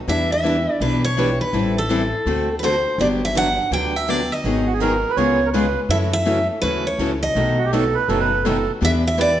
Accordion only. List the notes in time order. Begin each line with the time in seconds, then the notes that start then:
4.67 F#4
4.74 G#4
4.81 A#4
5.10 B4
5.17 C#5
5.46 A#4
5.53 B4
7.59 F#4
7.65 G4
7.72 A4
7.95 B4
8.09 A4
8.20 B4
8.44 A4